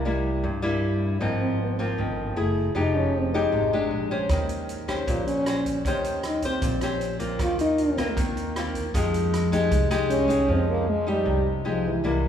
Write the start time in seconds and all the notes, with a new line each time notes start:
Already playing: C2 C3
0.05 G3 A#3 E4
0.43 G2
0.62 G3 A#3 E4
1.21 G#1 G#2 F3 A#3 C4
1.41 C4
1.61 C4
1.79 F3 A#3 C4
1.98 G1 D#3
2.36 F#1 A3 E4 G#4
2.75 F1 F3 G#3 D#4 G4
2.95 C#4
3.17 C4
3.34 G#3 D#4 G4
3.52 G#1 C3
3.73 G#3 D4 G4
3.91 A#1
4.11 C#4 G4 C5
4.29 D#2 D#3, kick, cross-stick, closed hi-hat
4.49 closed hi-hat
4.69 closed hi-hat
4.88 C#4 G4 C5, kick, cross-stick, closed hi-hat
5.07 A#1 A#2 F4, kick, closed hi-hat
5.27 C#4, closed hi-hat
5.46 C#4 G4 C5, cross-stick, closed hi-hat
5.65 kick, closed hi-hat
5.85 D#2 D#3 C#4 G4 C5, kick, closed hi-hat
6.04 closed hi-hat
6.23 D#4, cross-stick, closed hi-hat
6.42 C4 G4 C5, kick, closed hi-hat
6.62 A#1 A#2, kick, closed hi-hat
6.81 C#4 G4 C5, cross-stick, closed hi-hat
7.01 closed hi-hat
7.19 A#3 C4 F4, kick, closed hi-hat
7.39 D#2 D#3 F4, kick, cross-stick, closed hi-hat
7.59 D#4, closed hi-hat
7.78 closed hi-hat
7.97 A#3 C4 F4, kick, cross-stick, closed hi-hat
8.17 D#2 D#3, kick, closed hi-hat
8.37 closed hi-hat
8.56 A#3 C4 F4, cross-stick, closed hi-hat
8.75 kick, closed hi-hat
8.94 F2 F3 G#3 D#4 G4, kick, closed hi-hat
9.14 closed hi-hat
9.34 cross-stick, closed hi-hat
9.52 G#3 D#4 G4, kick, closed hi-hat
9.71 C2, kick, closed hi-hat
9.91 G#3 D#4 G4, cross-stick, closed hi-hat
10.10 C#4, closed hi-hat
10.28 G#3 D#4 G4, kick, closed hi-hat
10.48 F2 F3 C4
10.69 A#3
10.89 G#3
11.07 G3 D#4 G4
11.25 C2 C3
11.65 F3 G#3 D#4 G4
11.87 E3
12.04 C2 C3 G3 A#3 E4